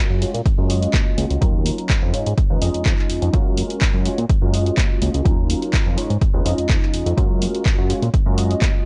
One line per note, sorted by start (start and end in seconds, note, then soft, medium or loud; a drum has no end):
0.00 0.18 G#3 medium
0.00 0.19 C#4 medium
0.00 0.19 F4 medium
0.00 0.19 F#4 medium
0.00 0.19 A#4 loud
0.10 0.25 F#2 medium
0.21 0.35 G#3 medium
0.21 0.35 C#4 medium
0.21 0.35 F4 medium
0.21 0.35 F#4 medium
0.21 0.35 C#5 medium
0.21 open hi-hat medium
0.34 0.41 A#2 medium
0.34 closed hi-hat medium
0.46 0.56 F#2 soft
0.46 kick loud
0.46 closed hi-hat medium
0.58 0.87 F#2 medium
0.58 0.67 G#3 medium
0.58 0.68 C#4 medium
0.58 0.68 F4 medium
0.58 0.68 F#4 medium
0.58 0.68 A#4 loud
0.69 1.38 G#3 medium
0.69 1.39 C#4 medium
0.69 1.39 F4 medium
0.69 1.39 F#4 medium
0.69 1.39 D#5 loud
0.69 open hi-hat loud
0.82 closed hi-hat soft
0.94 kick loud
0.94 clap loud
0.94 closed hi-hat medium
0.94 tambourine medium
0.94 high conga medium
1.07 tambourine soft
1.18 1.26 C#2 medium
1.18 open hi-hat medium
1.18 high conga medium
1.30 1.37 C#2 medium
1.30 closed hi-hat medium
1.41 1.71 D#2 medium
1.41 2.10 F#3 loud
1.41 2.11 C#4 medium
1.41 2.11 D#4 medium
1.41 2.11 F4 medium
1.41 2.11 A#4 loud
1.41 kick loud
1.41 closed hi-hat medium
1.41 tambourine medium
1.41 low conga medium
1.54 tambourine soft
1.65 open hi-hat loud
1.65 high conga medium
1.78 closed hi-hat soft
1.78 tambourine medium
1.90 kick loud
1.90 clap loud
1.90 closed hi-hat medium
2.02 2.13 F2 medium
2.13 2.24 G#2 soft
2.13 2.27 G#3 medium
2.13 2.27 C#4 medium
2.13 2.27 D#4 medium
2.13 2.27 F4 medium
2.13 2.27 C#5 medium
2.13 open hi-hat medium
2.26 2.34 G#2 medium
2.26 closed hi-hat medium
2.38 kick loud
2.38 closed hi-hat medium
2.50 2.57 D#2 medium
2.50 2.60 G#3 medium
2.50 2.60 C#4 medium
2.50 2.60 D#4 medium
2.50 2.60 F4 medium
2.50 2.60 B4 loud
2.61 2.70 F2 loud
2.61 3.31 G#3 medium
2.61 3.31 C#4 medium
2.61 3.31 D#4 medium
2.61 3.31 F4 medium
2.61 3.31 D#5 loud
2.61 open hi-hat loud
2.74 2.83 F2 soft
2.74 closed hi-hat soft
2.86 2.94 F2 medium
2.86 kick loud
2.86 clap loud
2.86 closed hi-hat medium
2.98 clap soft
3.09 3.20 F2 soft
3.09 open hi-hat medium
3.22 3.29 F2 loud
3.22 closed hi-hat medium
3.33 3.63 F#2 medium
3.33 4.02 G#3 loud
3.33 4.03 C#4 medium
3.33 4.03 F4 medium
3.33 4.03 F#4 medium
3.33 4.03 A#4 loud
3.33 kick loud
3.33 closed hi-hat medium
3.33 tambourine medium
3.33 low conga medium
3.46 tambourine soft
3.57 open hi-hat loud
3.57 high conga medium
3.69 closed hi-hat soft
3.69 tambourine medium
3.81 kick loud
3.81 clap loud
3.81 closed hi-hat medium
3.94 4.09 F#2 medium
4.05 4.19 G#3 medium
4.05 4.19 C#4 medium
4.05 4.19 F4 medium
4.05 4.19 F#4 medium
4.05 4.19 C#5 medium
4.05 open hi-hat medium
4.18 4.25 A#2 medium
4.18 closed hi-hat soft
4.29 4.40 F#2 soft
4.29 kick loud
4.29 closed hi-hat medium
4.41 4.71 F#2 medium
4.41 4.51 G#3 medium
4.41 4.52 C#4 medium
4.41 4.52 F4 medium
4.41 4.52 F#4 medium
4.41 4.52 A#4 loud
4.52 5.22 G#3 medium
4.52 5.23 C#4 medium
4.52 5.23 F4 medium
4.52 5.23 F#4 medium
4.52 5.23 D#5 loud
4.52 open hi-hat loud
4.66 closed hi-hat soft
4.77 kick loud
4.77 clap loud
4.77 closed hi-hat medium
4.77 tambourine medium
4.77 high conga medium
4.90 tambourine soft
5.01 5.10 C#2 medium
5.01 open hi-hat loud
5.01 high conga medium
5.14 5.21 C#2 medium
5.14 closed hi-hat soft
5.25 5.55 D#2 medium
5.25 5.94 F#3 medium
5.25 5.95 C#4 medium
5.25 5.95 D#4 medium
5.25 5.95 F4 medium
5.25 5.95 A#4 loud
5.25 kick loud
5.25 closed hi-hat medium
5.25 tambourine medium
5.25 low conga medium
5.50 open hi-hat loud
5.50 high conga medium
5.62 closed hi-hat soft
5.73 kick loud
5.73 clap loud
5.73 closed hi-hat medium
5.86 5.97 F2 medium
5.97 6.08 G#2 soft
5.97 6.11 G#3 medium
5.97 6.11 C#4 medium
5.97 6.11 D#4 medium
5.97 6.11 F4 medium
5.97 6.11 C#5 medium
5.97 open hi-hat medium
6.10 6.17 G#2 medium
6.10 closed hi-hat soft
6.22 kick loud
6.22 closed hi-hat medium
6.34 6.41 D#2 medium
6.34 6.44 G#3 medium
6.34 6.44 C#4 medium
6.34 6.44 D#4 medium
6.34 6.44 F4 medium
6.34 6.44 B4 loud
6.34 tambourine soft
6.45 6.54 F2 loud
6.45 7.14 G#3 medium
6.45 7.15 C#4 medium
6.45 7.15 D#4 medium
6.45 7.15 F4 medium
6.45 7.15 D#5 loud
6.45 open hi-hat loud
6.58 6.67 F2 soft
6.58 closed hi-hat soft
6.69 6.78 F2 medium
6.69 kick loud
6.69 clap loud
6.69 closed hi-hat medium
6.82 clap soft
6.93 7.04 F2 soft
6.93 open hi-hat medium
7.06 7.13 F2 medium
7.06 closed hi-hat soft
7.17 7.47 F#2 loud
7.17 7.86 G#3 loud
7.17 7.87 C#4 medium
7.17 7.87 F4 medium
7.17 7.87 F#4 medium
7.17 7.87 A#4 loud
7.17 kick loud
7.17 closed hi-hat medium
7.17 tambourine medium
7.17 low conga medium
7.30 tambourine soft
7.42 open hi-hat loud
7.42 high conga medium
7.55 closed hi-hat soft
7.55 tambourine medium
7.66 kick loud
7.66 clap loud
7.66 closed hi-hat medium
7.78 7.93 F#2 medium
7.89 8.03 G#3 medium
7.89 8.03 C#4 medium
7.89 8.03 F4 medium
7.89 8.03 F#4 medium
7.89 8.03 C#5 medium
7.89 open hi-hat medium
8.02 8.09 A#2 medium
8.02 closed hi-hat soft
8.02 tambourine medium
8.14 8.24 F#2 soft
8.14 kick loud
8.14 closed hi-hat medium
8.26 8.55 F#2 medium
8.26 8.36 G#3 medium
8.26 8.36 C#4 medium
8.26 8.36 F4 medium
8.26 8.36 F#4 medium
8.26 8.36 A#4 loud
8.37 8.85 G#3 medium
8.37 8.85 C#4 medium
8.37 8.85 F4 medium
8.37 8.85 F#4 medium
8.37 8.85 D#5 loud
8.37 open hi-hat loud
8.49 closed hi-hat soft
8.49 tambourine medium
8.61 kick loud
8.61 clap loud
8.61 closed hi-hat medium
8.61 tambourine medium
8.61 high conga medium
8.75 tambourine soft